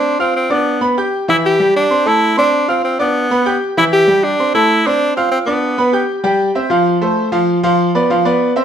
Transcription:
<<
  \new Staff \with { instrumentName = "Grand piano" } { \time 4/4 \key f \lydian \tempo 4 = 194 <c' c'' c'''>8 <f' f'' f'''>4 <d' d'' d'''>4 <b b' b''>8 <g' g'' g'''>4 | <e e' e''>4 <g g' g''>4 <c' c'' c'''>8 <a a' a''>4 <c' c'' c'''>8~ | <c' c'' c'''>8 <f' f'' f'''>4 <d' d'' d'''>4 <b b' b''>8 <g' g'' g'''>4 | <e e' e''>4 <g g' g''>4 <c' c'' c'''>8 <a a' a''>4 <c' c'' c'''>8~ |
<c' c'' c'''>8 <f' f'' f'''>4 <d' d'' d'''>4 <b b' b''>8 <g' g'' g'''>4 | <g g' g''>4 <c' c'' e''>8 <f f' f''>4 <a a' c''>4 <f f' f''>8~ | <f f' f''>8 <f f' f''>4 <b b' d''>8 <f f' f''>8 <b b' d''>4 <c' c'' e''>8 | }
  \new Staff \with { instrumentName = "Tenor saxophone" } { \time 4/4 \key f \lydian d'8 c'8 c'8 b4 r4. | e'8 g'4 d'4 e'4 d'8~ | d'8 c'8 c'8 b2 r8 | e'8 g'4 d'4 e'4 d'8~ |
d'8 c'8 c'8 b2 r8 | r1 | r1 | }
>>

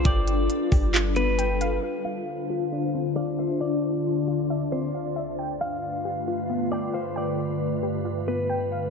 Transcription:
<<
  \new Staff \with { instrumentName = "Clean electric guitar" } { \time 4/4 \key d \dorian \tempo 4 = 135 d''2~ d''8 b'4. | r8 f''2~ f''8 d''8 c''8 | d''2~ d''8 c''4. | r8 f''2~ f''8 d''8 c''8 |
d''2~ d''8 b'4. | }
  \new Staff \with { instrumentName = "Synth pluck" } { \time 4/4 \key d \dorian <b f' g' f'' g''>4. g'8 f'8 b8 g''8 f''8 | f'''4. f'8 d'8 c'8 f''8 e''8 | d''4. f'8 e''8 c'8 f''8 e''8 | g''4. g'8 f'8 b8 g''8 f''8 |
g''4. g'8 f'8 b8 g''8 f''8 | }
  \new Staff \with { instrumentName = "Ambient pad" } { \time 4/4 \key d \dorian << { b'1 | c''1 | d''1 | b'1~ |
b'1 | } \\ { <g d' f' a'>1 | <d, d d' f'>1~ | <d, d d' f'>1 | <g, d a f'>1~ |
<g, d a f'>1 | } >> }
  \new Staff \with { instrumentName = "808-style bass" } { \clef bass \time 4/4 \key d \dorian g,,4 r8 g,,2~ g,,8 | r1 | r1 | r1 |
r1 | }
  \new DrumStaff \with { instrumentName = "Drums" } \drummode { \time 4/4 <hh bd>8 hh8 hh8 <hho bd>8 <hc hh>8 hh8 hh8 hh8 | r4 r4 r4 r4 | r4 r4 r4 r4 | r4 r4 r4 r4 |
r4 r4 r4 r4 | }
>>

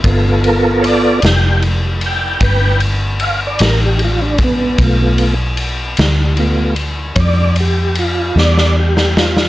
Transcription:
<<
  \new Staff \with { instrumentName = "Tonewheel organ" } { \time 12/8 \key g \mixolydian \tempo 4. = 51 r8 bes'8 <cis'' d''>8 g''8 r8 g''8 <b' g''>8 r8 <e'' f''>16 d''16 bes'16 g'16 f'16 d'16 b8~ | b2~ b8 r8 <cis'' d''>8 g'8 f'8 d''8 g'8 f'8 | }
  \new Staff \with { instrumentName = "Tonewheel organ" } { \time 12/8 \key g \mixolydian <b f' a'>4. r1 r8 | <a b f'>8 r4. <a b f'>8 r2. r8 | }
  \new Staff \with { instrumentName = "Fingered electric bass" } { \clef bass \time 12/8 \key g \mixolydian g,,4. f,,4. g,,4. a,,4. | b,,4. d,4. f,4. e,4. | }
  \new DrumStaff \with { instrumentName = "Drums" } \drummode { \time 12/8 <bd cymr>8 cymr8 cymr8 <cymr sn>8 cymr8 cymr8 <bd cymr>8 cymr8 cymr8 <cymr sn>8 cymr8 <bd cymr>8 | <bd cymr>8 cymr8 cymr8 <cymr sn>8 cymr8 cymr8 <bd cymr>8 cymr8 cymr8 sn16 sn8 sn16 sn16 sn16 | }
>>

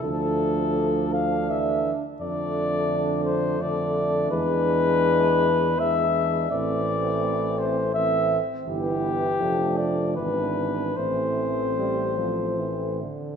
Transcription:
<<
  \new Staff \with { instrumentName = "Flugelhorn" } { \time 3/4 \key a \minor \tempo 4 = 83 a'4. f''8 e''8 r8 | d''4. c''8 d''4 | b'2 e''4 | d''4. c''8 e''8 r8 |
g'4. d''8 b'4 | c''2~ c''8 r8 | }
  \new Staff \with { instrumentName = "French horn section" } { \time 3/4 \key a \minor d'2. | d'2 d'4 | d'2 d'4 | c'2 c'4 |
e'4 d'4 d'4 | c'2~ c'8 r8 | }
  \new Staff \with { instrumentName = "Euphonium" } { \time 3/4 \key a \minor a2~ a8 r8 | a2 a4 | gis2 gis4 | a2 a8 r8 |
b4 a4 b4 | a2~ a8 r8 | }
  \new Staff \with { instrumentName = "Trombone" } { \clef bass \time 3/4 \key a \minor f2 e8 r8 | d2 d4 | e2 e4 | e2 e8 r8 |
e4 f4 e4 | e4 g8 f8 e8 d8 | }
  \new Staff \with { instrumentName = "Tuba" } { \clef bass \time 3/4 \key a \minor d,2~ d,8 r8 | f,2. | e,2. | a,,2~ a,,8 r8 |
g,,4 f,,4 gis,,4 | a,,2~ a,,8 r8 | }
>>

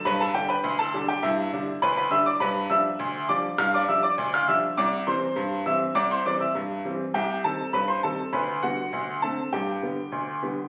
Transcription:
<<
  \new Staff \with { instrumentName = "Upright piano" } { \time 2/4 \key g \major \tempo 4 = 101 <b' b''>16 <a' a''>16 <g' g''>16 <b' b''>8 <a' a''>8 <g' g''>16 | <e' e''>4 <b' b''>16 <b' b''>16 <e'' e'''>16 <d'' d'''>16 | <b' b''>8 <e'' e'''>4 <d'' d'''>8 | <f'' f'''>16 <d'' d'''>16 <e'' e'''>16 <d'' d'''>8 <f'' f'''>16 <e'' e'''>8 |
<d'' d'''>8 <c'' c'''>4 <e'' e'''>8 | <d'' d'''>16 <c'' c'''>16 <d'' d'''>16 <e'' e'''>16 r4 | <g' g''>8 <a' a''>8 <b' b''>16 <c'' c'''>16 <a' a''>8 | <b' b''>8 <fis' fis''>4 <a' a''>8 |
<g' g''>2 | }
  \new Staff \with { instrumentName = "Upright piano" } { \clef bass \time 2/4 \key g \major g,8 <d g d'>8 d,8 <d g d'>8 | g,8 <d g d'>8 d,8 <d g d'>8 | g,8 <f g d'>8 d,8 <f g d'>8 | g,8 <f g d'>8 d,8 <f g d'>8 |
c,8 <e g c'>8 g,8 <e g c'>8 | c,8 <e g c'>8 g,8 <e g c'>8 | c,8 <ees g c'>8 g,8 <ees g c'>8 | d,8 <d g b>8 d,8 <d a c'>8 |
g,8 <d g b>8 d,8 <d g b>8 | }
>>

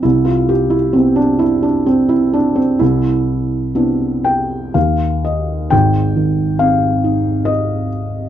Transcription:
<<
  \new Staff \with { instrumentName = "Felt piano" } { \time 3/4 \key c \major \tempo 4 = 65 e'16 f'16 g'16 e'16 c'16 d'16 e'16 d'16 c'16 e'16 d'16 c'16 | e'4 r8 g''8 f''8 ees''8 | \key aes \major g''4 f''4 ees''4 | }
  \new Staff \with { instrumentName = "Felt piano" } { \time 3/4 \key c \major c,4 <b e'>4 r4 | c,4 <b c' d' e'>4 ees,4 | \key aes \major <aes,, aes,>8 ees8 c'8 ees'4. | }
>>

